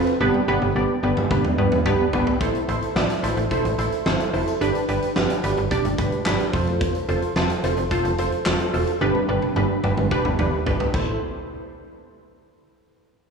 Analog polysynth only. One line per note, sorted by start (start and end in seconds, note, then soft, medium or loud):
0.00 0.13 C4 medium
0.00 0.13 F4 medium
0.00 0.13 A4 medium
0.00 0.13 B4 loud
0.21 0.41 B3 loud
0.21 0.41 D4 loud
0.21 0.41 G4 loud
0.21 0.41 B4 loud
0.48 0.68 B3 loud
0.48 0.68 D4 loud
0.48 0.68 G4 loud
0.48 0.68 B4 loud
0.76 0.96 B3 medium
0.76 0.96 D4 medium
0.76 0.96 G4 medium
0.76 0.96 D5 loud
1.03 1.24 B3 medium
1.03 1.24 D4 medium
1.03 1.24 G4 medium
1.03 1.24 B4 loud
1.31 1.51 B3 medium
1.31 1.51 D4 medium
1.31 1.51 G4 medium
1.31 1.51 B4 loud
1.58 1.79 B3 medium
1.58 1.79 D4 medium
1.58 1.79 G4 medium
1.58 1.79 B4 loud
1.86 2.06 B3 loud
1.86 2.06 D4 loud
1.86 2.06 G4 loud
1.86 2.06 B4 loud
2.13 2.34 B3 medium
2.13 2.34 D4 medium
2.13 2.34 G4 medium
2.13 2.34 B4 loud
2.41 2.61 E4 loud
2.41 2.61 A4 loud
2.41 2.61 C5 loud
2.69 2.89 E4 medium
2.69 2.89 A4 medium
2.69 2.89 C5 loud
2.96 3.16 E4 medium
2.96 3.16 A4 medium
2.96 3.16 D5 medium
3.23 3.44 E4 medium
3.23 3.44 A4 medium
3.23 3.44 C5 medium
3.51 3.71 E4 loud
3.51 3.71 A4 loud
3.51 3.71 C5 loud
3.78 3.99 E4 medium
3.78 3.99 A4 medium
3.78 3.99 C5 medium
4.06 4.26 E4 medium
4.06 4.26 A4 medium
4.06 4.26 C5 loud
4.33 4.54 E4 medium
4.33 4.54 A4 medium
4.33 4.54 C5 loud
4.61 4.81 D4 loud
4.61 4.81 G4 loud
4.61 4.81 B4 loud
4.89 5.09 D4 medium
4.89 5.09 G4 medium
4.89 5.09 B4 loud
5.16 5.36 D4 medium
5.16 5.36 G4 medium
5.16 5.36 B4 loud
5.43 5.64 D4 medium
5.43 5.64 G4 medium
5.43 5.64 B4 medium
5.71 5.91 D4 loud
5.71 5.91 G4 loud
5.71 5.91 D5 loud
5.98 6.19 D4 medium
5.98 6.19 G4 medium
5.98 6.19 B4 medium
6.26 6.46 D4 medium
6.26 6.46 G4 medium
6.26 6.46 B4 loud
6.53 6.98 F4 loud
6.53 6.98 A4 medium
6.53 6.98 C5 loud
7.09 7.29 F4 medium
7.09 7.29 A4 medium
7.09 7.29 C5 loud
7.36 7.57 F4 medium
7.36 7.57 A4 medium
7.36 7.56 C5 medium
7.64 7.84 F4 medium
7.64 7.84 A4 medium
7.64 7.84 C5 loud
7.91 8.12 F4 loud
7.91 8.12 A4 loud
7.91 8.12 C5 loud
8.19 8.39 F4 medium
8.19 8.39 A4 medium
8.19 8.39 C5 medium
8.46 8.67 F4 medium
8.46 8.67 A4 medium
8.46 8.67 C5 loud
8.74 8.94 F4 medium
8.74 8.94 A4 medium
8.74 8.94 C5 loud
9.01 9.22 D4 loud
9.01 9.21 G4 loud
9.01 9.22 B4 loud
9.29 9.49 D4 medium
9.29 9.49 G4 medium
9.29 9.49 B4 medium
9.56 9.77 D4 medium
9.56 9.77 G4 medium
9.56 9.77 B4 loud
9.84 10.04 D4 medium
9.84 10.04 G4 medium
9.84 10.04 B4 loud
10.11 10.32 D4 loud
10.11 10.32 G4 loud
10.11 10.32 B4 loud
10.39 10.59 D4 medium
10.39 10.59 G4 medium
10.39 10.59 B4 medium
10.66 10.87 D4 medium
10.66 10.87 G4 medium
10.66 10.87 B4 loud
10.94 11.19 E4 medium
10.94 11.19 A4 medium
10.94 11.19 C5 medium